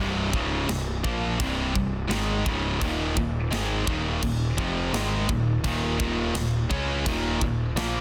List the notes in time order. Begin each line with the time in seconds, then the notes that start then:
Already playing: C1 C2
0.00 G2 C3
0.33 C#1 C#2 G#2 C#3, kick
0.68 C1 C2 G2, snare, crash
1.03 A#1 A#2 F3 A#3, kick
1.39 C1 C2 G2 C3, kick, crash
1.74 C1 C2 G2, kick
2.09 G#1 G#2 D#3 G#3, snare, crash
2.46 C#2 G#2 C#3, kick
2.80 D#1 D#2 A#2 D#3, kick, crash
3.15 D#1 D#2 A#2, kick
3.51 G#1 G#2 D#3 G#3, snare, crash
3.86 D#1 D#2 A#2 D#3, kick
4.22 D#1 D#2 A#2, kick, crash
4.57 F1 F2 C3 F3, kick
4.93 G#1 G#2 D#3 G#3, snare, crash
5.29 D#1 D#2 A#2, kick
5.64 D#1 D#2 A#2 D#3, kick, crash
5.99 D#1 D#2 A#2 D#3, kick
6.34 D#1 D#2 A#2, snare, crash
6.70 C#2 C#3 G#3 C#4, kick
7.05 D#1 D#2 A#2 D#3, kick, crash
7.41 D#1 D#2 A#2, kick
7.75 A#1 A#2 F3 A#3, snare, crash